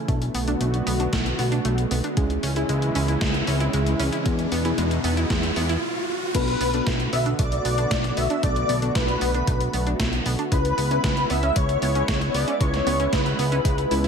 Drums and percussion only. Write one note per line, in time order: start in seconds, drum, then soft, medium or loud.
0.08 kick loud
0.08 closed hi-hat medium
0.22 closed hi-hat soft
0.35 open hi-hat medium
0.48 closed hi-hat soft
0.61 closed hi-hat medium
0.74 closed hi-hat soft
0.87 open hi-hat medium
1.00 closed hi-hat soft
1.13 kick loud
1.13 snare loud
1.13 closed hi-hat medium
1.26 closed hi-hat soft
1.39 open hi-hat medium
1.52 closed hi-hat soft
1.65 closed hi-hat medium
1.78 closed hi-hat soft
1.91 open hi-hat medium
2.04 closed hi-hat soft
2.17 kick loud
2.17 closed hi-hat medium
2.30 closed hi-hat soft
2.43 open hi-hat medium
2.56 closed hi-hat soft
2.69 closed hi-hat medium
2.82 closed hi-hat soft
2.95 open hi-hat medium
3.08 closed hi-hat soft
3.21 kick loud
3.21 snare loud
3.21 closed hi-hat medium
3.34 closed hi-hat soft
3.47 open hi-hat medium
3.60 closed hi-hat soft
3.73 closed hi-hat medium
3.86 closed hi-hat soft
4.00 open hi-hat medium
4.13 closed hi-hat soft
4.26 kick loud
4.26 closed hi-hat medium
4.39 closed hi-hat soft
4.52 open hi-hat medium
4.65 closed hi-hat soft
4.78 closed hi-hat medium
4.91 closed hi-hat soft
5.04 open hi-hat medium
5.17 closed hi-hat soft
5.30 kick loud
5.30 snare loud
5.30 closed hi-hat medium
5.43 closed hi-hat soft
5.56 open hi-hat medium
5.69 closed hi-hat soft
6.35 kick loud
6.35 closed hi-hat loud
6.35 crash loud
6.48 closed hi-hat soft
6.61 open hi-hat medium
6.74 closed hi-hat soft
6.87 kick loud
6.87 snare loud
6.87 closed hi-hat loud
7.00 closed hi-hat soft
7.13 open hi-hat medium
7.26 closed hi-hat soft
7.39 kick loud
7.39 closed hi-hat loud
7.52 closed hi-hat soft
7.65 open hi-hat medium
7.78 closed hi-hat soft
7.91 kick loud
7.91 snare loud
7.91 closed hi-hat loud
8.04 snare soft
8.04 closed hi-hat soft
8.17 open hi-hat medium
8.30 closed hi-hat soft
8.43 kick loud
8.43 closed hi-hat loud
8.56 closed hi-hat soft
8.69 open hi-hat medium
8.82 closed hi-hat soft
8.95 kick loud
8.95 snare loud
8.95 closed hi-hat loud
9.08 closed hi-hat soft
9.21 open hi-hat medium
9.34 closed hi-hat soft
9.47 kick loud
9.47 closed hi-hat loud
9.61 closed hi-hat soft
9.73 open hi-hat medium
9.87 closed hi-hat soft
10.00 kick loud
10.00 snare loud
10.00 closed hi-hat loud
10.13 closed hi-hat soft
10.26 open hi-hat medium
10.39 closed hi-hat soft
10.52 kick loud
10.52 closed hi-hat medium
10.65 closed hi-hat soft
10.78 open hi-hat medium
10.91 closed hi-hat soft
11.04 kick loud
11.04 snare loud
11.04 closed hi-hat medium
11.17 closed hi-hat soft
11.30 open hi-hat medium
11.43 closed hi-hat soft
11.56 kick loud
11.56 closed hi-hat loud
11.69 closed hi-hat soft
11.82 open hi-hat medium
11.95 closed hi-hat soft
12.08 kick loud
12.08 snare loud
12.08 closed hi-hat medium
12.21 snare soft
12.21 closed hi-hat soft
12.34 open hi-hat medium
12.48 closed hi-hat soft
12.61 kick loud
12.61 closed hi-hat medium
12.74 snare soft
12.74 closed hi-hat soft
12.87 open hi-hat medium
13.00 closed hi-hat soft
13.13 kick loud
13.13 snare loud
13.13 closed hi-hat medium
13.26 closed hi-hat soft
13.39 open hi-hat medium
13.52 closed hi-hat soft
13.65 kick loud
13.65 closed hi-hat medium
13.78 closed hi-hat soft
13.91 open hi-hat medium
14.04 closed hi-hat soft